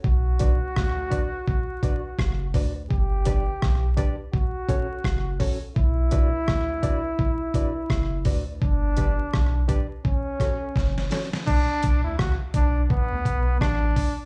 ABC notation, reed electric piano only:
X:1
M:4/4
L:1/16
Q:"Swing 16ths" 1/4=84
K:Bm
V:1 name="Reed electric piano"
z2 [DFBd] z3 [DFBd] z3 [DFBd] z3 [DFBd] [Bd] | z2 [DGBd] z3 [DGBd] z3 [CFAc] z3 [CFAc] [Ac] | z2 [DFBd] z3 [DFBd] z3 [DFBd] z3 [DFBd] z | z2 [DGBd] z3 [DGBd] z3 [CFAc] z3 [CFAc] [Ac] |
z16 |]